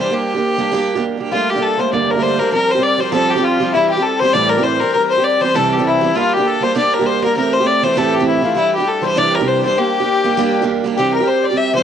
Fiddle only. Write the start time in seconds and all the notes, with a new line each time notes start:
0.00 C5
0.13 G4
1.33 F4
1.50 G4
1.62 A4
1.80 C5
1.93 D5
2.11 A#4
2.23 C5
2.39 A#4
2.53 A#4
2.71 C5
2.83 D5
3.00 C5
3.13 A4
3.30 G4
3.44 F4
3.74 E4
3.90 G4
4.03 A4
4.19 C5
4.33 D5
4.49 A#4
4.63 C5
4.80 A#4
4.94 A#4
5.10 C5
5.24 D5
5.41 C5
5.55 A4
5.72 G4
5.86 E4
6.16 F4
6.34 G4
6.47 A4
6.63 C5
6.77 D5
6.94 A#4
7.06 C5
7.24 A#4
7.37 A#4
7.54 C5
7.66 D5
7.84 C5
7.98 A4
8.14 G4
8.27 E4
8.57 E4
8.75 G4
8.88 A4
9.06 C5
9.18 D5
9.35 A#4
9.47 C5
9.65 C5
9.78 G4
10.98 G4
11.14 A#4
11.28 C5
11.46 D5
11.57 E5
11.76 C5